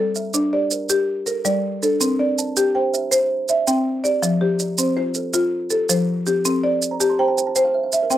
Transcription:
Already playing: G3 A4
0.15 E5, maracas
0.34 D4 D5, maracas
0.53 G4 D5
0.71 A#4, maracas
0.89 G4, maracas
1.26 A4 A#4, maracas
1.45 G3 D5, maracas
1.82 D4 A4, maracas
2.01 C4 A#4, maracas
2.19 C4 D5
2.38 A5, maracas
2.57 G4 G5, maracas
2.75 C5 G5
2.93 E5, maracas
3.11 C5, maracas
3.49 D5 E5, maracas
3.67 C4 G5, maracas
4.04 G4 D5, maracas
4.22 F3 E5, maracas
4.41 F3 G4
4.59 D5, maracas
4.78 C4 C5, maracas
4.97 F4 C5
5.14 A4, maracas
5.33 F4, maracas
5.70 G4 A4, maracas
5.89 F3 C5, maracas
6.26 C4 G4, maracas
6.45 C4 A4, maracas
6.63 C4 D5
6.82 maracas
6.91 A#5
7.00 G4 A5, maracas
7.10 C6
7.19 C5 G5 A#5
7.28 A5
7.37 G5, maracas
7.47 A5
7.56 C5 G5, maracas
7.65 F5
7.74 E5
7.83 F5
7.92 E5, maracas
8.03 A#4
8.10 C4 C5 G5, maracas

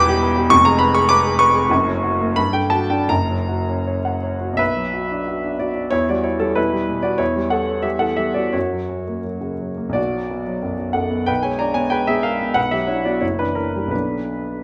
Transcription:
Already playing: E1 E2 G3 G4 B4 G5 B5 D6
0.09 G4
0.23 B4
0.37 G4
0.50 F1 F2 C#6
0.65 G#3 A#5
0.79 B4 B5
0.94 G#4 C#6
1.09 B4 D6
1.25 G#4
1.39 B4 C#6
1.54 G#4
1.70 F#1 F#2
1.87 F#3
2.03 F#4
2.20 A#3
2.36 G2 B5
2.53 D3 G5
2.70 F#4 A5
2.90 D4 G5
3.09 F#1 F#2 A#5
3.29 F#3
3.48 F#4
3.68 C#4
3.87 C#5
4.05 F#5
4.23 C#5
4.41 F#4
4.53 B1
4.57 B4 E5
4.75 F#3
4.93 F#4
5.12 D4
5.27 F#4
5.44 D4
5.59 F#4 D5
5.75 D4
5.91 E2 E4 C#5
6.09 G3 F#4 D5
6.24 E4 C#5
6.39 G3 C#4 A4
6.55 B2 E4 B4
6.73 G3
6.89 B2
7.03 E4 F#4 D5
7.18 E2 E4 C#5
7.36 G3
7.50 E4 A4 F#5
7.67 C#4
7.82 G3 G4 E5
7.99 E3 A4 F#5
8.16 G3 G4 E5
8.34 C#4 F#4 D5
8.53 F#2 F#4 C#5
8.72 F#3
8.89 C#4
9.08 A#3
9.23 F#3
9.41 C#3
9.59 F#3
9.77 A#3
9.89 B1 D5
9.95 F#4
10.13 F#3
10.30 B3
10.47 F#3
10.63 F#2
10.78 F#3
10.93 F#2 A4 F#5
11.11 B3
11.26 B1 B4 G5
11.43 G#3 C#5 G#5
11.59 D4 D5 A#5
11.74 B3 C#5 G#5
11.90 G#3 B4 G5
12.07 B2 G#4 E5
12.23 G#3 A#4 F5
12.41 B3
12.54 B1 B4 F#5
12.71 F#3 G4 E5
12.87 D4 E4 C#5
13.05 B3 F#4 D5
13.21 F#1 E4 C#5
13.39 E3 D4 B4
13.55 C#4 A#4
13.76 G3
13.87 B1 D3 F#3 B3 B4
13.93 D4

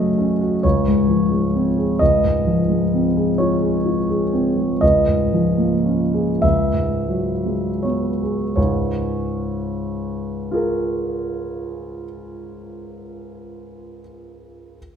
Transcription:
Already playing: F#2 C#3 F#3 A3 D#5
0.18 C#4
0.41 F#4
0.63 C#2 C#5
0.88 G#2
1.08 F3
1.31 G#3
1.55 C4
1.78 G#4
1.99 C#2 D#5
2.24 G#2
2.47 F3
2.69 G#3
2.94 C4
3.16 G#4
3.38 F4 C#5
3.62 G#4
3.86 F4
4.10 G#4
4.33 C4
4.58 G#3
4.81 C#2 D#5
5.08 G#2
5.33 F3
5.57 A#3
5.85 C#4
6.14 G#4
6.42 C#2 E5
6.73 G#2
7.08 F#3
7.46 G#3
7.83 B3 C#5
8.23 G#4
8.56 C#2 G#2 C#5
10.51 F4 G#4 A#4

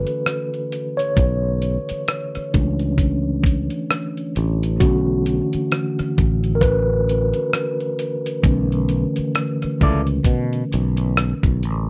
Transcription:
Already playing: D3 E3 A3 C#4 A4 B4
0.07 closed hi-hat
0.26 cross-stick, closed hi-hat
0.54 closed hi-hat
0.72 closed hi-hat
0.97 C#5, closed hi-hat
1.17 B1, kick, closed hi-hat
1.62 closed hi-hat
1.89 muted fretless electric bass stroke, closed hi-hat
2.08 cross-stick, closed hi-hat
2.35 muted fretless electric bass stroke, cross-stick, closed hi-hat
2.54 C#2 E3 A3 C#4 D4, kick, closed hi-hat
2.79 closed hi-hat
2.98 kick, closed hi-hat
3.43 kick, closed hi-hat
3.70 closed hi-hat
3.91 cross-stick, closed hi-hat
4.17 closed hi-hat
4.36 A1, closed hi-hat
4.63 closed hi-hat
4.80 B1 D3 E3 A3 C#4 F#4, kick, closed hi-hat
5.26 closed hi-hat
5.53 muted fretless electric bass stroke, closed hi-hat
5.72 cross-stick, closed hi-hat
5.99 muted fretless electric bass stroke, cross-stick, closed hi-hat
6.18 A1, kick, closed hi-hat
6.44 closed hi-hat
6.55 A#4
6.61 B4, kick, closed hi-hat
7.09 closed hi-hat
7.34 closed hi-hat
7.53 cross-stick, closed hi-hat
7.80 closed hi-hat
7.99 closed hi-hat
8.26 closed hi-hat
8.44 B1 D3 E3 A3 C#4, kick, closed hi-hat
8.72 closed hi-hat
8.89 closed hi-hat
9.16 muted fretless electric bass stroke, closed hi-hat
9.35 cross-stick, closed hi-hat
9.62 muted fretless electric bass stroke, cross-stick, closed hi-hat
9.81 C#2 E4 A4 D5, kick, closed hi-hat
10.07 closed hi-hat
10.24 B2, kick, closed hi-hat
10.53 closed hi-hat
10.72 B1, closed hi-hat
10.97 closed hi-hat
11.17 cross-stick, closed hi-hat
11.43 B1, kick, closed hi-hat
11.63 A1, closed hi-hat

